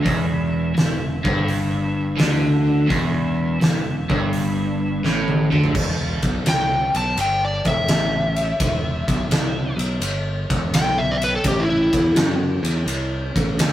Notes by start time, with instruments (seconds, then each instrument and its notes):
Already playing: electric slide guitar E5
0.03 picked electric bass E1, overdriven electric guitar E2, kick, open hi-hat
0.75 picked electric bass E1, overdriven electric guitar E2, snare, open hi-hat
1.24 picked electric bass G1, overdriven electric guitar G2, kick
1.48 open hi-hat
2.17 overdriven electric guitar D3, snare, open hi-hat
2.21 picked electric bass D2
2.87 picked electric bass E1, overdriven electric guitar E2, kick, open hi-hat
3.60 picked electric bass E1, overdriven electric guitar E2, snare, open hi-hat
4.09 picked electric bass G1, overdriven electric guitar G2, kick
4.33 open hi-hat
5.04 picked electric bass A1, overdriven electric guitar A2, snare
5.28 high tom
5.51 picked electric bass D2, overdriven electric guitar D3, mid tom
5.64 floor tom
5.75 picked electric bass E1, kick, crash
6.23 picked electric bass B1, kick, ride
6.45 picked electric bass C2, electric slide guitar G5, snare, ride
6.95 picked electric bass B1, electric slide guitar A5, ride
7.17 picked electric bass G1, ride
7.21 electric slide guitar G5
7.45 electric slide guitar D5
7.65 picked electric bass E1, electric slide guitar E5, kick, ride
7.88 picked electric bass A1, snare, ride
8.36 ride
8.60 picked electric bass E1, kick, ride
9.08 picked electric bass B1, kick, ride
9.29 picked electric bass C2, snare, ride
9.77 picked electric bass B1, ride
10.00 picked electric bass G1, ride
10.50 picked electric bass E1, kick, ride
10.73 picked electric bass B1, electric slide guitar G5, snare, ride
10.98 electric slide guitar E5
11.11 electric slide guitar D5
11.22 electric slide guitar B4, ride
11.36 electric slide guitar A4
11.44 picked electric bass A1, electric slide guitar G4, kick, ride
11.60 electric slide guitar E4
11.70 electric slide guitar E4
11.93 picked electric bass E2, kick, ride
12.14 picked electric bass F#2, snare, ride
12.63 picked electric bass E2, ride
12.86 picked electric bass C2, ride
13.36 picked electric bass A1, kick, ride
13.57 picked electric bass D2, snare, ride